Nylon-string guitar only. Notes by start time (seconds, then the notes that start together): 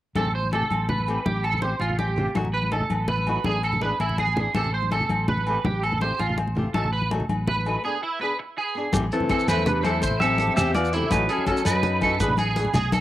0.15 E3 A3 C4 G4
0.51 E3 A3 C4 G4
1.07 E3 A3 C4 G4
1.61 E3 C4 G4, muted nylon-string guitar stroke
2.16 E3 C4 G4
2.35 F#3 A3 D#4 F#4
2.71 F#3 A3 D#4
3.27 F#3 A3 D#4 F#4
3.45 E3 B3 D4 G#4
3.82 E3 B3 D4 G#4
4.36 E3 B3 D4 G#4
4.55 E3 C4 G4, muted nylon-string guitar stroke
4.91 E3 A3 C4 G4
5.47 E3 A3 C4 G4
6.00 E3 A3 C4 G4
6.55 E3 A3 C4 G4
6.74 F#3 A3 D#4 F#4
7.11 F#3 A3 D#4 F#4
7.65 F#3 A3 D#4 F#4
7.84 B3 D4 G#4
8.19 B3 D4 G#4
8.75 B3 D4 G#4
8.93 E3 A3 C4 G4
9.29 E3 A3 C4 G4
9.83 E3 A3 G4
10.39 E3 A3 C4 G4
10.93 E3 A3 C4 G4
11.11 F#3 A3 D#4 F#4
11.48 F#3 A3 D#4 F#4
12.02 F#3 A3 D#4 F#4
12.21 E3 B3 D4 G#4
12.57 E3 B3 D4 G#4